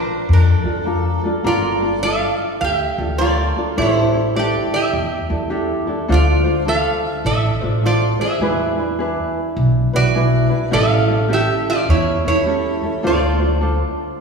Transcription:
Already playing: resonator guitar played with a steel bar D4 A#4, ukulele D4 F4 A#4
0.29 upright bass F2
0.33 resonator guitar played with a steel bar D4 A#4
0.44 resonator guitar played with a steel bar A4
0.64 upright bass F2, ukulele D4 F4 A4
0.85 ukulele D4 F4 A4 A#4
1.24 ukulele D4 F4 A4
1.44 upright bass G1, ukulele D4 F4 A4 A#4, resonator guitar played with a steel bar F4 D5
1.82 ukulele D4 F4 A4
2.03 ukulele D4 F4 A4, resonator guitar played with a steel bar A4 F5
2.61 upright bass D2, resonator guitar played with a steel bar G4 F5
2.72 resonator guitar played with a steel bar E5
2.98 upright bass D2, ukulele D4 F4 A4
3.18 ukulele D4 F4 A4 A#4, resonator guitar played with a steel bar F4 D5
3.57 ukulele D4 F4 A4
3.77 upright bass A1, ukulele D4 E4 G4 A4, resonator guitar played with a steel bar C5
3.82 resonator guitar played with a steel bar E4
4.14 ukulele D4 E4 A4
4.36 ukulele D4 E4 G4 A4, resonator guitar played with a steel bar G4 D5
4.74 resonator guitar played with a steel bar G4 E5
4.93 upright bass E2
5.29 upright bass E2, ukulele D4 E4 A4
5.50 ukulele D4 E4 G4 A4
5.87 ukulele D4 E4 A4
6.08 upright bass D2, ukulele D4 F4 A4 C5, resonator guitar played with a steel bar F4
6.14 resonator guitar played with a steel bar D5
6.44 ukulele D4 F4 C5
6.66 ukulele D4 F4 A4 C5, resonator guitar played with a steel bar A4 F5
7.11 resonator guitar played with a steel bar E5
7.25 upright bass A1, resonator guitar played with a steel bar A4 E5
7.61 upright bass A1, ukulele D4 F4 C5
7.83 ukulele D4 F4 A4 C5, resonator guitar played with a steel bar F4 D5
8.20 ukulele D4 F4 C5, resonator guitar played with a steel bar G#4 E5
8.40 upright bass E2, ukulele D4 E4 G#4 B4
8.79 ukulele D4 E4 B4
8.99 ukulele D4 E4 G#4 B4
9.57 upright bass B1
9.93 upright bass B1, ukulele D4 E4 B4, resonator guitar played with a steel bar F#4 D5
10.15 ukulele D4 E4 G#4 B4
10.49 ukulele D4 E4 B4
10.71 upright bass A1, ukulele C#4 E4 G4 A4, resonator guitar played with a steel bar A4 F5
11.08 ukulele C#4 E4 A4
11.29 ukulele C#4 E4 G4 A4
11.33 resonator guitar played with a steel bar G4 E5
11.70 resonator guitar played with a steel bar F4 D5
11.89 upright bass E2, resonator guitar played with a steel bar E4 C#5
12.24 upright bass E2, ukulele C#4 E4 A4, resonator guitar played with a steel bar C#5
12.29 resonator guitar played with a steel bar E4
12.45 ukulele C#4 E4 G4 A4
12.83 ukulele C#4 E4 A4
13.03 upright bass D2, ukulele D4 F4 A4 C5, resonator guitar played with a steel bar D5
13.08 resonator guitar played with a steel bar F4
13.40 ukulele D4 F4 C5
13.61 ukulele D4 F4 A4 C5

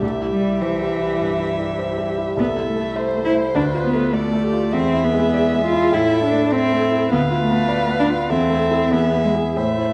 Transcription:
Already playing: viola G4
0.02 grand piano C2, cello A3, violin E5
0.21 grand piano E4
0.32 cello G3
0.41 grand piano G3
0.61 cello E3, grand piano C5
0.80 grand piano G3
1.00 grand piano E4
1.21 grand piano G2
1.40 grand piano E4
1.59 grand piano G3
1.79 grand piano C5
1.98 grand piano G3
2.18 grand piano E4
2.37 grand piano C2, cello B3, viola A4, violin E5
2.57 grand piano E4
2.67 cello A3
2.76 grand piano A3
2.95 viola C5, violin C5, grand piano E5
3.16 grand piano A3
3.25 cello E4, viola C5
3.35 grand piano E4
3.54 grand piano D2, cello D4, viola B4
3.74 grand piano F4
3.84 cello B3
3.94 grand piano A3
4.13 cello A3, viola A4, violin D5, grand piano D5
4.33 grand piano A3
4.43 viola G4
4.53 grand piano F4
4.73 grand piano E2, cello C4, viola G#4, violin E5
4.93 grand piano E4
5.04 cello B3
5.13 grand piano G#3
5.34 grand piano D5
5.53 grand piano G#3
5.64 cello F4
5.72 grand piano E4
5.92 grand piano A2, cello E4, viola A4, violin E5
6.13 grand piano E4
6.23 cello D4
6.33 grand piano A3
6.52 cello C4, viola A4, grand piano C5, violin E5
6.72 grand piano A3
6.91 grand piano E4
7.12 grand piano D2, cello B3, viola B4, violin F5
7.30 grand piano F4
7.41 cello A3
7.50 grand piano B3
7.69 grand piano D5
7.89 grand piano B3
7.99 cello D4
8.10 grand piano F4
8.30 grand piano E2, cello C4, viola A4, violin E5
8.50 grand piano A3
8.71 grand piano E4 A4
8.91 grand piano E2, cello B3, viola G#4, violin E5
9.13 grand piano B3
9.24 cello G#3
9.35 grand piano E4 G#4
9.56 grand piano A2, cello A3, viola C5, violin E5
9.78 grand piano E4

